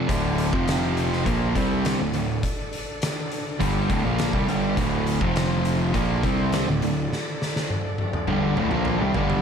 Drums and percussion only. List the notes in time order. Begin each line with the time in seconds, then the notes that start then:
0.09 kick, closed hi-hat
0.38 closed hi-hat
0.53 kick
0.68 snare, closed hi-hat
0.97 closed hi-hat
1.12 snare
1.26 kick, closed hi-hat
1.55 kick, closed hi-hat
1.85 snare, closed hi-hat
2.14 closed hi-hat
2.43 kick, closed hi-hat
2.73 closed hi-hat
3.02 snare, closed hi-hat
3.32 closed hi-hat
3.61 kick, closed hi-hat
3.90 kick, closed hi-hat
4.18 snare, closed hi-hat
4.33 kick
4.48 closed hi-hat
4.77 kick, closed hi-hat
5.07 closed hi-hat
5.21 kick
5.36 snare, closed hi-hat
5.65 closed hi-hat
5.94 kick, closed hi-hat
6.23 kick, closed hi-hat
6.52 snare, closed hi-hat
6.82 closed hi-hat
7.13 snare
7.42 snare
7.56 snare
7.70 high tom
7.98 high tom
8.13 mid tom
8.28 mid tom
8.57 mid tom
8.71 mid tom
8.85 mid tom
9.14 floor tom
9.30 floor tom